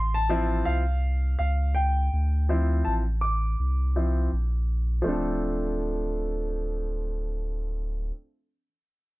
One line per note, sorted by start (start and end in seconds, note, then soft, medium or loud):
0.00 0.63 A1 medium
0.00 0.16 C6 medium
0.14 0.67 A5 medium
0.29 0.81 F3 medium
0.29 0.82 C4 medium
0.29 0.82 E4 medium
0.65 1.36 C2 medium
0.65 1.37 F5 medium
1.39 2.09 C#2 medium
1.39 1.77 F5 medium
1.75 2.44 G5 medium
2.13 2.82 D2 loud
2.49 3.01 F3 soft
2.49 3.01 C4 soft
2.49 3.01 E4 medium
2.85 3.56 A1 medium
2.85 2.93 A5 medium
3.21 4.64 D6 medium
3.60 4.29 C2 medium
3.96 4.29 F3 soft
3.96 4.29 C4 soft
3.96 4.29 E4 soft
4.33 5.02 A#1 medium
5.02 8.11 D1 loud
5.02 8.07 F3 medium
5.02 8.09 A3 medium
5.02 8.11 C4 medium
5.08 8.13 D4 medium
5.08 8.15 A4 medium